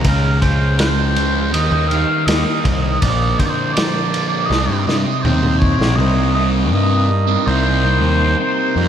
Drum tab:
RD |x-x-x-x-x-x-x-x-|x-x-x-x---------|----------------|
SD |----o-------o---|----o---o-o----o|----------------|
T2 |----------------|------------oo--|----------------|
BD |o-o-----------o-|o-o-----------o-|----------------|